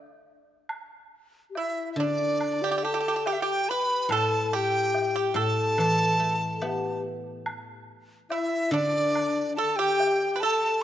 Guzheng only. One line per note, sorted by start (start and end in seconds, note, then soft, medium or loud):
0.00 0.27 E4 soft
0.00 0.70 A4 soft
1.96 4.52 D3 medium
4.09 5.33 A2 medium
5.34 7.87 A2 medium
5.78 7.46 E3 medium
6.20 7.88 A3 soft
6.61 8.30 B3 soft
8.71 10.82 D3 medium